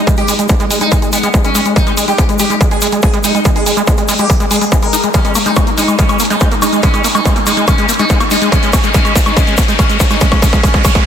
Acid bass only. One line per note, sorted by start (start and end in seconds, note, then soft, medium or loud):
0.07 0.15 G#3 medium
0.18 0.23 G#3 medium
0.28 0.34 G#3 loud
0.39 0.47 G#3 medium
0.49 0.55 G#3 medium
0.60 0.65 G#3 loud
0.71 0.79 G#3 medium
0.81 0.87 G#3 medium
0.92 0.97 G#3 loud
1.02 1.10 G#3 medium
1.13 1.18 G#3 medium
1.23 1.29 G#3 loud
1.34 1.42 G#3 medium
1.44 1.50 G#3 medium
1.55 1.61 G#3 loud
1.66 1.74 G#3 medium
1.76 1.82 G#3 medium
1.87 1.92 G#3 loud
1.97 2.06 G#3 medium
2.08 2.13 G#3 medium
2.18 2.24 G#3 loud
2.29 2.37 G#3 medium
2.40 2.45 G#3 medium
2.50 2.56 G#3 loud
2.61 2.69 G#3 medium
2.71 2.77 G#3 medium
2.82 2.87 G#3 loud
2.92 3.01 G#3 medium
3.03 3.08 G#3 medium
3.13 3.19 G#3 loud
3.24 3.32 G#3 medium
3.35 3.40 G#3 medium
3.45 3.51 G#3 loud
3.56 3.64 G#3 medium
3.66 3.72 G#3 medium
3.77 3.82 G#3 loud
3.87 3.96 G#3 medium
3.98 4.03 G#3 medium
4.09 4.14 G#3 loud
4.19 4.27 G#3 medium
4.30 4.35 G#3 medium
4.40 4.46 G#3 loud
4.51 4.59 G#3 medium
4.61 4.65 G#3 medium
4.72 4.77 G#3 medium
4.83 4.88 G#3 medium
4.93 4.96 D#4 loud
5.04 5.09 G#3 medium
5.14 5.20 G#3 medium
5.25 5.33 G#3 medium
5.35 5.39 A#3 medium
5.46 5.51 G#3 medium
5.56 5.65 G#3 medium
5.67 5.70 A#3 medium
5.78 5.83 G#3 medium
5.88 5.96 G#3 medium
5.99 6.04 G#3 loud
6.09 6.18 G#3 medium
6.20 6.23 A#3 medium
6.30 6.36 G#3 loud
6.41 6.49 G#3 medium
6.52 6.55 A#3 medium
6.62 6.68 G#3 loud
6.73 6.81 G#3 medium
6.83 6.89 G#3 loud
6.94 7.02 G#3 medium
7.04 7.08 A#3 medium
7.15 7.20 G#3 loud
7.25 7.34 G#3 medium
7.36 7.39 A#3 medium
7.47 7.52 G#3 loud
7.57 7.65 G#3 medium
7.68 7.73 G#3 loud
7.78 7.87 G#3 medium
7.89 7.92 A#3 medium
7.99 8.05 G#3 loud
8.10 8.18 G#3 medium
8.21 8.24 A#3 medium
8.31 8.37 G#3 loud
8.42 8.50 G#3 medium
8.52 8.58 G#3 loud
8.63 8.71 G#3 medium
8.73 8.77 A#3 medium
8.84 8.89 G#3 loud
8.94 9.00 G#3 loud
9.05 9.13 G#3 medium
9.16 9.19 A#3 medium
9.26 9.32 G#3 loud
9.37 9.42 G#3 loud
9.47 9.56 G#3 medium
9.58 9.61 A#3 medium
9.68 9.74 G#3 loud
9.79 9.84 G#3 loud
9.90 9.98 G#3 medium
10.00 10.03 A#3 medium
10.11 10.16 G#3 loud
10.21 10.27 G#3 loud
10.32 10.40 G#3 medium
10.42 10.48 G#3 loud
10.53 10.61 G#3 medium
10.63 10.69 G#3 loud
10.74 10.82 G#3 medium
10.85 10.90 G#3 loud
10.95 11.03 G#3 medium